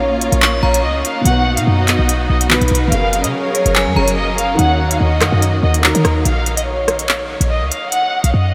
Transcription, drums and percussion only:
0.21 closed hi-hat medium
0.32 closed hi-hat medium
0.42 clap loud
0.74 closed hi-hat medium
1.05 closed hi-hat medium
1.25 closed hi-hat medium
1.57 closed hi-hat medium
1.88 clap medium
1.88 closed hi-hat medium
2.09 closed hi-hat medium
2.41 closed hi-hat medium
2.50 clap loud
2.61 closed hi-hat soft
2.68 closed hi-hat medium
2.75 closed hi-hat medium
2.92 closed hi-hat medium
3.13 closed hi-hat medium
3.24 closed hi-hat medium
3.55 closed hi-hat medium
3.66 closed hi-hat medium
3.75 clap loud
4.08 closed hi-hat medium
4.38 closed hi-hat medium
4.59 closed hi-hat medium
4.91 closed hi-hat medium
5.21 cross-stick loud
5.21 clap medium
5.21 closed hi-hat medium
5.42 closed hi-hat medium
5.74 closed hi-hat medium
5.84 clap loud
5.95 closed hi-hat medium
6.05 cross-stick loud
6.05 closed hi-hat medium
6.25 closed hi-hat medium
6.46 closed hi-hat medium
6.57 closed hi-hat medium
6.88 cross-stick medium
6.88 closed hi-hat medium
6.99 closed hi-hat medium
7.09 clap loud
7.41 closed hi-hat medium
7.72 closed hi-hat medium
7.92 closed hi-hat medium
8.24 closed hi-hat medium

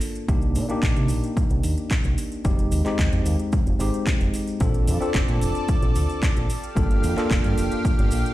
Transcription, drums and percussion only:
0.01 open hi-hat medium
0.01 maracas medium
0.15 closed hi-hat soft
0.15 maracas soft
0.28 kick loud
0.28 closed hi-hat medium
0.28 maracas medium
0.41 closed hi-hat soft
0.41 maracas soft
0.55 open hi-hat loud
0.55 maracas medium
0.69 closed hi-hat soft
0.69 maracas soft
0.83 kick loud
0.83 clap loud
0.83 closed hi-hat medium
0.83 maracas medium
0.97 closed hi-hat soft
0.97 maracas soft
1.09 open hi-hat medium
1.09 maracas medium
1.24 closed hi-hat soft
1.24 maracas soft
1.37 kick loud
1.37 closed hi-hat medium
1.37 maracas soft
1.50 closed hi-hat soft
1.50 maracas soft
1.63 open hi-hat loud
1.63 maracas medium
1.77 closed hi-hat soft
1.77 maracas soft
1.90 kick loud
1.90 clap loud
1.90 closed hi-hat medium
1.90 maracas medium
2.04 closed hi-hat soft
2.04 maracas soft
2.18 open hi-hat medium
2.18 maracas medium
2.32 closed hi-hat soft
2.32 maracas soft
2.45 kick loud
2.45 closed hi-hat medium
2.45 maracas medium
2.59 closed hi-hat soft
2.59 maracas soft
2.72 open hi-hat loud
2.72 maracas medium
2.85 clap soft
2.85 closed hi-hat soft
2.85 maracas soft
2.99 kick loud
2.99 clap loud
2.99 closed hi-hat medium
2.99 maracas soft
3.13 closed hi-hat soft
3.13 maracas soft
3.26 open hi-hat medium
3.26 maracas medium
3.39 closed hi-hat soft
3.39 maracas soft
3.52 kick loud
3.52 closed hi-hat medium
3.52 maracas medium
3.67 closed hi-hat soft
3.67 maracas soft
3.80 open hi-hat loud
3.80 maracas medium
3.94 closed hi-hat soft
3.94 maracas soft
4.07 kick loud
4.07 clap loud
4.07 closed hi-hat medium
4.07 maracas medium
4.21 closed hi-hat soft
4.21 maracas soft
4.34 open hi-hat medium
4.34 maracas medium
4.48 closed hi-hat soft
4.48 maracas soft
4.60 kick loud
4.60 closed hi-hat medium
4.60 maracas soft
4.74 closed hi-hat soft
4.74 maracas soft
4.88 open hi-hat loud
4.88 maracas medium
5.02 closed hi-hat soft
5.02 maracas soft
5.14 kick loud
5.14 clap loud
5.14 closed hi-hat medium
5.14 maracas soft
5.28 closed hi-hat soft
5.28 maracas soft
5.41 open hi-hat medium
5.41 maracas medium
5.55 closed hi-hat soft
5.55 maracas soft
5.68 kick loud
5.68 closed hi-hat medium
5.68 maracas soft
5.82 closed hi-hat soft
5.82 maracas soft
5.95 open hi-hat loud
5.95 maracas medium
6.10 closed hi-hat soft
6.10 maracas soft
6.23 kick loud
6.23 clap loud
6.23 closed hi-hat medium
6.23 maracas soft
6.37 closed hi-hat soft
6.37 maracas soft
6.50 open hi-hat medium
6.50 maracas medium
6.63 closed hi-hat soft
6.63 maracas soft
6.77 kick loud
6.77 closed hi-hat medium
6.77 maracas soft
6.90 closed hi-hat soft
6.90 maracas soft
7.04 open hi-hat loud
7.04 maracas medium
7.18 clap soft
7.18 closed hi-hat soft
7.18 maracas soft
7.31 kick loud
7.31 clap loud
7.31 closed hi-hat medium
7.31 maracas medium
7.44 closed hi-hat soft
7.44 maracas soft
7.58 open hi-hat medium
7.58 maracas medium
7.71 closed hi-hat soft
7.71 maracas soft
7.85 kick loud
7.85 closed hi-hat medium
7.85 maracas soft
7.99 closed hi-hat soft
7.99 maracas soft
8.11 open hi-hat loud
8.11 maracas medium
8.26 closed hi-hat soft
8.26 maracas soft

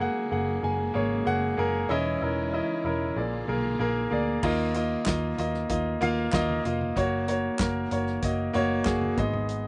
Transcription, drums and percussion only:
4.43 kick medium
4.43 crash medium
4.74 closed hi-hat medium
5.06 kick medium
5.06 snare loud
5.06 clap medium
5.06 closed hi-hat medium
5.38 closed hi-hat medium
5.54 snare soft
5.69 kick loud
5.69 closed hi-hat medium
6.01 closed hi-hat medium
6.01 floor tom medium
6.32 kick medium
6.32 snare loud
6.32 clap medium
6.32 closed hi-hat medium
6.49 floor tom medium
6.65 closed hi-hat medium
6.81 floor tom soft
6.97 kick medium
6.97 closed hi-hat medium
7.28 closed hi-hat medium
7.59 kick loud
7.59 snare loud
7.59 clap medium
7.59 closed hi-hat medium
7.91 closed hi-hat medium
8.07 snare soft
8.22 kick medium
8.22 closed hi-hat medium
8.54 closed hi-hat medium
8.54 floor tom medium
8.85 kick loud
8.85 snare loud
8.85 clap medium
8.85 closed hi-hat medium
9.01 floor tom medium
9.17 kick medium
9.17 closed hi-hat medium
9.33 floor tom medium
9.49 closed hi-hat medium

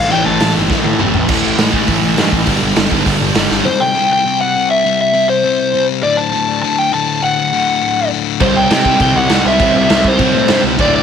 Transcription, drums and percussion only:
0.40 snare loud
0.40 open hi-hat medium
0.70 kick loud
0.70 snare medium
0.84 high tom medium
0.99 mid tom medium
1.14 floor tom loud
1.29 kick loud
1.29 crash loud
1.58 snare loud
1.58 open hi-hat medium
1.73 kick medium
1.87 kick loud
1.87 open hi-hat medium
2.18 snare loud
2.18 open hi-hat medium
2.32 kick medium
2.47 kick medium
2.47 open hi-hat medium
2.76 snare loud
2.76 open hi-hat medium
2.91 kick medium
3.06 kick loud
3.06 open hi-hat medium
3.35 snare loud
3.35 open hi-hat medium
3.51 snare medium
8.40 kick loud
8.40 crash medium
8.71 snare loud
8.71 crash medium
8.85 kick medium
9.00 kick loud
9.00 crash medium
9.29 snare loud
9.29 crash medium
9.60 kick loud
9.60 crash medium
9.90 snare loud
9.90 crash medium
10.04 kick medium
10.19 kick loud
10.19 crash medium
10.48 snare loud
10.48 crash medium
10.79 kick loud
10.79 crash medium

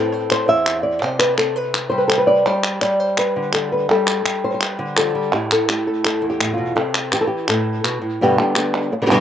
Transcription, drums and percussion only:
0.30 clap medium
0.66 clap medium
1.20 clap medium
1.38 clap medium
1.74 clap medium
2.10 clap medium
2.64 clap medium
2.81 clap medium
3.17 clap medium
3.53 clap medium
4.07 clap medium
4.26 clap medium
4.61 clap medium
4.97 clap medium
5.51 clap medium
5.69 clap medium
6.05 clap medium
6.40 clap medium
6.95 clap medium
7.12 clap medium
7.48 clap medium
7.84 clap medium
8.56 clap medium
8.74 clap soft

